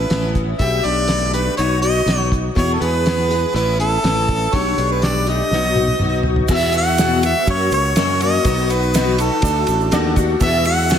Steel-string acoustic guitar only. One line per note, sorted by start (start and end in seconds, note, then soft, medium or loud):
0.00 0.10 C#4 soft
0.00 0.10 E4 medium
0.10 0.59 E3 medium
0.10 0.59 B3 medium
0.10 0.60 C#4 medium
0.10 0.60 E4 medium
0.59 0.84 B2 medium
0.59 0.84 G3 medium
0.59 0.84 A3 medium
0.59 0.83 D4 medium
0.59 0.82 G4 medium
0.83 1.06 A3 soft
0.83 1.07 D4 soft
0.83 1.08 G4 medium
1.07 1.33 G3 medium
1.07 1.33 A3 medium
1.07 1.33 D4 medium
1.07 1.31 G4 medium
1.32 1.57 A3 soft
1.32 1.59 D4 soft
1.32 1.58 G4 medium
1.58 1.83 B2 medium
1.58 1.83 F#3 medium
1.58 1.82 B3 medium
1.58 1.81 D#4 medium
1.58 1.80 F#4 medium
1.81 2.05 B3 soft
1.81 2.07 D#4 soft
1.81 2.07 F#4 medium
2.06 2.55 F#3 medium
2.06 2.56 B3 medium
2.06 2.56 D#4 medium
2.06 2.57 F#4 medium
2.55 2.80 E2 medium
2.55 2.81 B2 medium
2.55 2.81 E3 medium
2.55 2.81 G#3 medium
2.55 2.81 B3 medium
2.55 2.80 G#4 medium
2.81 3.04 E3 soft
2.81 3.05 G#3 soft
2.81 3.06 B3 soft
2.81 3.06 G#4 medium
3.05 3.29 E3 medium
3.05 3.29 G#3 medium
3.05 3.29 B3 medium
3.05 3.27 G#4 medium
3.28 3.53 E3 soft
3.28 3.53 G#3 soft
3.28 3.53 B3 soft
3.28 3.54 G#4 medium
3.53 3.79 A2 medium
3.53 3.79 E3 medium
3.53 3.79 B3 medium
3.53 3.78 C#4 medium
3.53 3.77 E4 medium
3.78 4.02 B3 soft
3.78 4.03 C#4 soft
3.78 4.03 E4 medium
4.03 4.53 E3 medium
4.03 4.53 B3 medium
4.03 4.53 C#4 medium
4.03 4.54 E4 medium
4.53 4.78 B2 medium
4.53 4.78 G3 medium
4.53 4.77 A3 medium
4.53 4.77 D4 medium
4.53 4.75 G4 medium
4.76 5.01 A3 soft
4.76 5.02 D4 soft
4.76 5.02 G4 medium
5.03 5.27 G3 medium
5.03 5.27 A3 medium
5.03 5.27 D4 medium
5.03 5.25 G4 medium
5.27 5.53 A3 soft
5.27 5.52 D4 soft
5.27 5.51 G4 soft
5.52 5.76 B2 medium
5.52 5.77 F#3 medium
5.52 5.77 B3 medium
5.52 5.77 D#4 medium
5.52 5.75 F#4 medium
5.76 6.01 B3 soft
5.76 6.01 D#4 soft
5.76 6.00 F#4 soft
6.01 6.47 F#3 medium
6.01 6.49 B3 medium
6.01 6.50 D#4 medium
6.01 6.49 F#4 medium
6.48 6.73 E2 medium
6.48 6.73 B2 medium
6.48 6.74 F#3 medium
6.48 6.74 G#3 medium
6.48 6.73 B3 medium
6.48 6.73 F#4 medium
6.74 6.98 F#3 soft
6.74 6.99 G#3 soft
6.74 6.98 B3 medium
6.74 6.98 F#4 medium
6.98 7.23 E2 medium
6.98 7.23 B2 medium
6.98 7.23 F#3 medium
6.98 7.24 G#3 medium
6.98 7.23 B3 loud
6.98 7.22 F#4 medium
7.24 7.47 F#3 soft
7.24 7.48 G#3 soft
7.24 7.48 B3 medium
7.24 7.48 F#4 medium
7.48 7.96 F#3 medium
7.48 7.95 A#3 medium
7.48 7.95 C#4 medium
7.48 7.96 F#4 medium
7.95 8.20 F#2 medium
7.95 8.20 C#3 medium
7.95 8.21 F#3 medium
7.95 8.21 A#3 medium
7.95 8.21 C#4 medium
7.95 8.20 F#4 medium
8.21 8.44 F#3 soft
8.21 8.45 A#3 medium
8.21 8.46 C#4 medium
8.21 8.45 F#4 medium
8.44 8.69 B2 medium
8.44 8.70 F#3 medium
8.44 8.70 B3 medium
8.44 8.69 D#4 medium
8.44 8.68 F#4 medium
8.69 8.94 B3 soft
8.69 8.94 D#4 medium
8.69 8.94 F#4 medium
8.94 9.19 B2 medium
8.94 9.19 F#3 medium
8.94 9.19 B3 medium
8.94 9.18 D#4 medium
8.94 9.17 F#4 medium
9.18 9.43 B3 soft
9.18 9.43 D#4 medium
9.18 9.43 F#4 medium
9.43 9.90 D3 medium
9.43 9.90 A3 medium
9.43 9.91 D4 medium
9.43 9.92 F#4 medium
9.91 10.16 D3 medium
9.91 10.16 A3 medium
9.91 10.15 D4 medium
9.91 10.15 F#4 loud
10.16 10.41 A3 medium
10.16 10.41 D4 medium
10.16 10.40 F#4 medium
10.40 10.65 E2 medium
10.40 10.65 B2 medium
10.40 10.65 F#3 medium
10.40 10.66 G#3 medium
10.40 10.65 B3 medium
10.40 10.64 F#4 medium
10.65 10.91 F#3 medium
10.65 10.91 G#3 soft
10.65 10.90 B3 medium
10.65 10.90 F#4 medium
10.91 10.99 E2 medium
10.91 10.99 B2 medium
10.91 10.99 F#3 medium
10.91 10.99 G#3 medium
10.91 10.99 B3 medium
10.91 10.99 F#4 loud